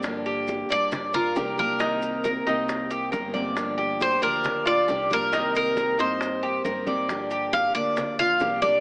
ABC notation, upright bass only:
X:1
M:4/4
L:1/8
Q:1/4=136
K:Gm
V:1 name="Upright bass" clef=bass
G,,3 G,,3 C,,2- | C,,3 C,,3 G,,,2- | G,,,3 D,,3 C,,2- | C,,3 G,,3 G,,2- |
G,,3 D,,3 C,,2 |]